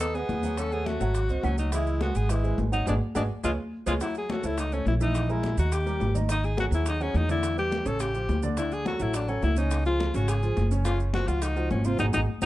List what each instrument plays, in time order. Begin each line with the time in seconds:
Already playing: upright bass D#2
0.00 grand piano B3 B4 D#5, tenor saxophone D#4, alto saxophone A4, high bongo, high conga, maracas
0.14 grand piano B3 B4 D#5, tenor saxophone B3, alto saxophone G#4, high bongo, high conga, maracas
0.29 upright bass D#2, high bongo, low bongo, high conga, maracas
0.43 grand piano F#3 F#4 F#5, high bongo, high conga, maracas
0.57 tenor saxophone C#4, alto saxophone A4, high bongo, high conga, maracas
0.72 grand piano A3 A4 C#5, tenor saxophone B3, alto saxophone G#4, high conga, maracas
0.86 tenor saxophone A3, alto saxophone F#4, high bongo, high conga, maracas
1.00 upright bass G#1, grand piano F#3 F#4 F#5, high bongo, high conga, maracas
1.15 high bongo, high conga, maracas
1.29 upright bass C2, grand piano C4 C5 D#5, high bongo, high conga, maracas
1.43 upright bass C#2, grand piano F#3 F#4 F#5, tenor saxophone F#3, alto saxophone C#4, high bongo, low bongo, high conga, maracas
1.58 tenor saxophone F#3, alto saxophone D#4, high bongo, maracas
1.72 grand piano E3 E4 E5, tenor saxophone G#3, alto saxophone E4, high bongo, maracas
1.87 high conga, maracas
2.01 grand piano G#3 G#4 B4, tenor saxophone B3, alto saxophone F#4, high bongo, high conga, maracas
2.15 upright bass G#1, tenor saxophone B3, alto saxophone G#4, high conga, maracas
2.29 grand piano G#3 G#4 B4, tenor saxophone G#3, alto saxophone E4, high bongo, high conga, maracas
2.44 grand piano G#3 G#4 B4, high bongo, high conga, maracas
2.58 upright bass G#1, high bongo, low bongo, high conga, maracas
2.72 grand piano F#3 F#4 F#5, tenor saxophone F#3, alto saxophone D#4, high bongo, maracas
2.86 upright bass G#1, tenor saxophone G#3, alto saxophone D4, grand piano F#4 G#4 B4, high bongo, high conga, maracas
3.15 upright bass G#1, tenor saxophone G#3, alto saxophone D4, grand piano F#4 G#4 B4, high bongo, high conga, maracas
3.44 upright bass C#2, tenor saxophone G#3, alto saxophone F4, grand piano G#4 B4 C#5, high bongo, high conga, maracas
3.86 upright bass C#2, tenor saxophone G#3, alto saxophone F4, grand piano G#4 B4 C#5, high bongo, high conga, maracas
4.00 grand piano F#3 F#4 F#5, alto saxophone E4, high bongo, high conga, maracas
4.15 alto saxophone G#4, high conga, maracas
4.29 grand piano A3 A4 C#5, alto saxophone F#4, high bongo, high conga, maracas
4.43 upright bass C#2, grand piano A3 A4 C#5, alto saxophone E4, high conga, maracas
4.58 alto saxophone D#4, high bongo, high conga, maracas
4.72 grand piano A3 A4 C#5, alto saxophone C#4, high bongo, high conga, maracas
4.86 upright bass A#1, alto saxophone E4, high bongo, low bongo, high conga, maracas
5.00 grand piano E3 E4 E5, alto saxophone D#4, high bongo, maracas
5.15 high bongo, high conga, maracas
5.29 grand piano G#3 G#4 A#4, alto saxophone E4, high conga, maracas
5.43 high bongo, high conga, maracas
5.58 upright bass D#2, grand piano D#3 D#4 D#5, alto saxophone F#4, high bongo, high conga, maracas
5.72 alto saxophone G4, high bongo, high conga, maracas
5.86 grand piano G3 G4 A#4, high bongo, high conga, maracas
6.00 upright bass G#1, high bongo, low bongo, high conga, maracas
6.14 grand piano D#3 D#4 D#5, high bongo, high conga, maracas
6.29 grand piano D#3 D#4 D#5, alto saxophone D#4, high bongo, high conga, maracas
6.44 alto saxophone G#4, high conga, maracas
6.57 grand piano F#3 F#4 G#4, alto saxophone F#4, high bongo, high conga, maracas
6.71 upright bass D#2, grand piano F#3 F#4 G#4, alto saxophone E4, high bongo, high conga, maracas
6.86 alto saxophone D#4, high bongo, high conga, maracas
7.00 grand piano F#3 F#4 G#4, alto saxophone C#4, high bongo, high conga, maracas
7.14 upright bass E2, alto saxophone D#4, high bongo, low bongo, high conga, maracas
7.28 grand piano D3 D4 D5, alto saxophone E4, high bongo, maracas
7.43 high bongo, maracas
7.56 grand piano G3 G4 B4, alto saxophone G4, high conga, maracas
7.72 high bongo, high conga, maracas
7.85 upright bass A1, grand piano C#3 C#4 C#5, alto saxophone A4, high bongo, high conga, maracas
8.00 alto saxophone G4, high bongo, high conga, maracas
8.14 grand piano F3 F4 G4, high bongo, high conga, maracas
8.29 upright bass D2, high bongo, low bongo, high conga, maracas
8.43 grand piano D3 D4 D5, high bongo, high conga, maracas
8.57 grand piano D3 D4 D5, alto saxophone E4, high bongo, high conga, maracas
8.71 alto saxophone G#4, high conga, maracas
8.85 grand piano F#3 F#4 A4, alto saxophone F#4, high bongo, high conga, maracas
9.00 upright bass A1, grand piano F#3 F#4 A4, alto saxophone E4, high conga, maracas
9.14 alto saxophone D4, high bongo, maracas
9.28 grand piano F#3 F#4 A4, alto saxophone C#4, high bongo, high conga, maracas
9.42 upright bass C#2, alto saxophone E4, high bongo, low bongo, high conga, maracas
9.56 grand piano C#3 C#4 C#5, alto saxophone D#4, high bongo, maracas
9.71 high bongo, high conga, maracas
9.85 grand piano F3 F4 G#4, alto saxophone F4, high conga, maracas
10.00 high bongo, high conga, maracas
10.14 upright bass G#1, grand piano C#3 C#4 C#5, alto saxophone F#4, high bongo, high conga, maracas
10.28 alto saxophone G#4, high bongo, high conga, maracas
10.43 grand piano F3 F4 G#4, high bongo, high conga, maracas
10.56 upright bass F#1, high bongo, low bongo, high conga, maracas
10.71 grand piano C#3 C#4 C#5, high bongo, maracas
10.85 grand piano C#3 C#4 C#5, alto saxophone F4, high bongo, high conga, maracas
11.00 high conga, maracas
11.13 grand piano F3 F4 F#4, alto saxophone F#4, high bongo, high conga, maracas
11.27 upright bass C#2, grand piano F3 F4 F#4, alto saxophone F4, high bongo, high conga, maracas
11.42 alto saxophone D#4, high bongo, high conga, maracas
11.56 grand piano F3 F4 F#4, high bongo, high conga, maracas
11.70 upright bass G#1, alto saxophone C#4, high bongo, low bongo, high conga, maracas
11.84 grand piano C3 C4 C5, alto saxophone F4, high bongo, maracas
11.99 upright bass G#1, grand piano D#4 F#4 G#4, alto saxophone D#4, low bongo, high conga, maracas
12.13 upright bass G#1, grand piano D#4 F#4 G#4, alto saxophone D#4, low bongo, high conga, maracas
12.42 upright bass G#1, grand piano D#4 F#4 G#4, low bongo, high conga, maracas